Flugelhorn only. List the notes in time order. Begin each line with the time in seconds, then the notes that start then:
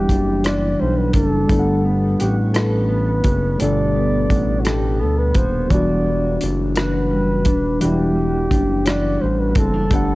Already playing: G4
0.45 D5
0.81 C5
0.98 B4
1.15 A4
2.20 G4
2.55 B4
3.60 D5
4.61 F#4
4.66 G4
5.01 A4
5.19 B4
5.37 C5
5.71 D5
6.77 B4
7.82 G4
8.86 D5
9.21 C5
9.39 B4
9.58 A4